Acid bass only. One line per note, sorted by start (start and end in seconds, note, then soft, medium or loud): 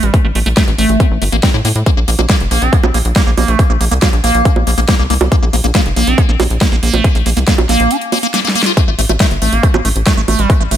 0.03 0.15 G3 medium
0.14 0.18 A3 medium
0.24 0.27 A3 medium
0.35 0.39 A3 medium
0.46 0.49 A3 loud
0.57 0.63 A3 loud
0.78 1.02 A3 loud
1.00 1.06 C4 loud
1.22 1.24 A3 medium
1.32 1.37 A#3 medium
1.43 1.49 C4 medium
1.54 1.57 E4 medium
1.65 1.69 A#3 medium
1.86 1.91 A#3 medium
1.97 2.00 A#3 medium
2.08 2.10 A#3 loud
2.19 2.21 A#3 medium
2.30 2.36 A#3 loud
2.51 2.63 A#3 medium
2.62 2.74 C4 medium
2.73 2.77 A#3 medium
2.84 2.86 A#3 medium
2.94 2.98 A#3 medium
3.16 3.22 A#3 loud
3.27 3.31 A#3 medium
3.37 3.50 A#3 medium
3.48 3.61 A3 medium
3.59 3.63 A#3 medium
3.70 3.72 A#3 medium
3.81 3.85 A#3 medium
3.91 3.94 A#3 loud
4.02 4.08 A#3 loud
4.24 4.47 A#3 loud
4.45 4.52 D4 loud
4.67 4.71 A#3 medium
4.78 4.80 A#3 loud
4.89 4.95 A#3 loud
4.99 5.03 A#3 medium
5.10 5.14 A#3 loud
5.32 5.36 A#3 medium
5.42 5.45 A#3 medium
5.53 5.56 A#3 loud
5.64 5.67 A#3 medium
5.75 5.81 A#3 loud
5.96 6.09 A#3 medium
6.07 6.19 C4 medium
6.18 6.22 A#3 medium
6.29 6.31 A#3 medium
6.40 6.44 A#3 medium
6.61 6.67 A#3 loud
6.72 6.76 A#3 medium
6.83 6.95 A#3 medium
6.94 7.06 A3 medium
7.04 7.09 A#3 medium
7.15 7.18 A#3 medium
7.26 7.30 A#3 medium
7.37 7.39 A#3 loud
7.48 7.54 A#3 loud
7.69 7.92 A#3 loud
7.91 7.97 D4 loud
8.12 8.19 A#3 medium
8.23 8.27 A#3 loud
8.34 8.40 A#3 loud
8.45 8.49 A#3 medium
8.55 8.62 A#3 loud
8.66 8.73 F4 medium
8.77 8.81 A3 medium
8.88 8.90 A3 medium
8.99 9.01 A3 loud
9.09 9.12 A3 medium
9.20 9.26 A3 loud
9.42 9.54 A3 medium
9.53 9.65 A#3 medium
9.63 9.68 A3 medium
9.74 9.77 A3 medium
9.85 9.89 A3 medium
10.06 10.13 A3 loud
10.17 10.21 A3 medium
10.28 10.40 A3 medium
10.39 10.51 G3 medium
10.50 10.54 A3 medium
10.60 10.63 A3 medium
10.71 10.75 A3 medium